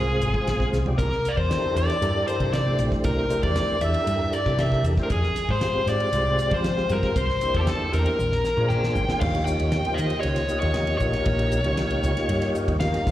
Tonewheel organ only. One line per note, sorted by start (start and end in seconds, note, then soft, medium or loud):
0.00 0.29 G#3 medium
0.00 0.29 C4 medium
0.00 0.29 F4 medium
0.00 0.30 G#4 medium
0.00 0.30 C5 medium
0.33 0.81 G#3 medium
0.33 0.81 C4 medium
0.33 0.82 F4 medium
0.33 0.82 G#4 medium
0.33 0.82 C5 medium
0.86 0.98 G#3 medium
0.86 0.98 C4 medium
0.86 0.99 F4 medium
0.86 0.99 G4 medium
0.86 0.99 D5 medium
1.49 1.97 D4 medium
1.49 1.97 E4 medium
1.49 1.97 G4 medium
1.49 1.97 A4 medium
1.49 1.98 A#4 medium
2.01 2.61 D4 medium
2.01 2.61 E4 medium
2.01 2.62 G4 medium
2.01 2.61 A4 medium
2.01 2.61 A#4 medium
2.66 3.25 A3 medium
2.66 3.25 D4 medium
2.66 3.26 E4 medium
2.66 3.26 G4 medium
2.66 3.26 C5 medium
3.28 3.77 A3 medium
3.28 3.78 D4 medium
3.28 3.78 E4 medium
3.28 3.77 G4 medium
3.28 3.78 C5 medium
3.82 4.41 D4 medium
3.82 4.41 E4 medium
3.82 4.41 G4 medium
3.82 4.41 A4 medium
3.82 4.42 A#4 medium
4.47 4.94 D4 medium
4.47 4.94 E4 medium
4.47 4.94 G4 medium
4.47 4.94 A4 medium
4.47 4.95 A#4 medium
4.98 5.11 A3 medium
4.98 5.11 D4 medium
4.98 5.11 E4 medium
4.98 5.11 G4 medium
4.98 5.11 C5 medium
5.61 6.09 G#3 medium
5.61 6.09 C4 medium
5.61 6.10 F4 medium
5.61 6.10 G4 medium
5.61 6.10 C5 medium
6.11 6.72 G#3 medium
6.11 6.72 C4 medium
6.11 6.73 F4 medium
6.11 6.72 G4 medium
6.11 6.73 C5 medium
6.76 7.15 G#3 medium
6.76 7.16 C4 medium
6.76 7.16 F4 medium
6.76 7.16 G4 medium
6.76 7.16 C5 medium
7.41 7.89 A#3 medium
7.41 7.89 D4 medium
7.41 7.89 E4 medium
7.41 7.90 G4 medium
7.41 7.90 C5 medium
7.92 8.18 A#3 medium
7.92 8.19 D4 medium
7.92 8.19 E4 medium
7.92 8.19 G4 medium
7.92 8.19 C5 medium
8.57 9.05 A#3 medium
8.57 9.05 D4 medium
8.57 9.05 F4 medium
8.57 9.05 G#4 medium
8.57 9.05 C5 medium
9.08 9.20 A#3 medium
9.08 9.22 D4 medium
9.08 9.21 F4 medium
9.08 9.22 G#4 medium
9.08 9.23 C5 medium
9.21 9.81 A#3 medium
9.21 9.81 D#4 medium
9.21 9.81 F4 medium
9.21 9.82 G4 medium
9.21 9.81 C#5 medium
9.85 10.45 A#3 medium
9.85 10.45 D#4 medium
9.85 10.45 F4 medium
9.85 10.46 G4 medium
9.85 10.46 C5 medium
10.49 10.97 A#3 medium
10.49 10.97 D#4 medium
10.49 10.97 F4 medium
10.49 10.98 G4 medium
10.49 10.98 D#5 medium
11.01 11.61 A#3 medium
11.01 11.61 D#4 medium
11.01 11.61 F4 medium
11.01 11.61 G4 medium
11.01 11.61 A#4 medium
11.65 12.13 A#3 medium
11.65 12.13 D#4 medium
11.65 12.13 F4 medium
11.65 12.13 G4 medium
11.65 12.13 C#5 medium
12.17 12.76 A#3 medium
12.17 12.77 D#4 medium
12.17 12.77 F4 medium
12.17 12.77 G4 medium
12.17 12.77 C#5 loud
12.80 13.06 A#3 medium
12.80 13.04 D#4 medium
12.80 13.04 F4 medium
12.80 13.07 G4 medium
12.80 13.07 A#4 medium
13.05 13.11 G#3 medium
13.05 13.11 C#4 medium
13.05 13.11 D#4 medium
13.05 13.11 F4 medium
13.05 13.11 C5 medium